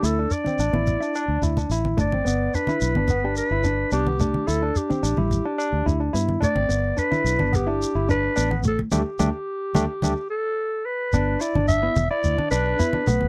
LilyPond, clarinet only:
\new Staff \with { instrumentName = "Clarinet" } { \time 4/4 \key g \major \tempo 4 = 108 a'8 d''2~ d''8 r8 d''8~ | d''8 b'4. b'4 g'4 | a'8 g'2~ g'8 r8 d''8~ | d''8 b'4 g'4 b'4 a'8 |
g'2~ g'8 a'4 b'8~ | b'8 d''8 e''8. d''8. b'4. | }